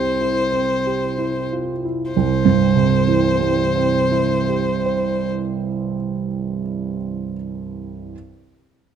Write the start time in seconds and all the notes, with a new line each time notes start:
Already playing: C2 C4 E4 G4 C5
0.21 E4
0.53 C4
0.87 G4
1.18 E4
1.53 F4
1.85 E4
2.12 C5
2.17 C2
2.45 G2
2.76 C3
3.07 E3
3.40 G3
3.76 C4
4.11 E4
4.49 G4
4.86 C5